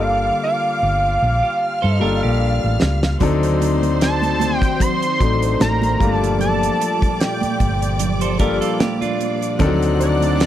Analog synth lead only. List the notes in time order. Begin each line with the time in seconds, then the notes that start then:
0.03 F5
0.43 F5
1.94 D#5
4.02 A5
4.57 G5
4.81 C6
5.61 A#5
6.13 A5
6.41 A5
7.20 G5
10.00 D5